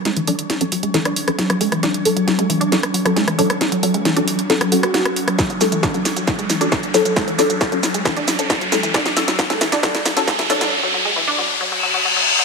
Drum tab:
HH |xxoxxxoxxxoxxxox|xxoxxxoxxxoxxxox|xxoxxxoxxxoxxxox|xxoxxxoxxxoxxxox|
SH |----------------|----------------|----------------|xxxxxxxxxxxxxxxx|
SD |o---o---or-ror-r|o---o---or-ror-r|o---o---or-ror-r|o-o-o-o-o-o-o-o-|
BD |----------------|----------------|----------------|o---o---o---o---|

HH |xxoxxxoxxxoxxxox|xxoxxxoxxxoxxxox|----------------|
SH |xxxxxxxxxxxxxxxx|xxxxxxxxxxxxxxxx|----------------|
SD |o-o-o-o-o-o-o-o-|oooooooooooooooo|----------------|
BD |o---o---o---o---|o---o---o---o---|----------------|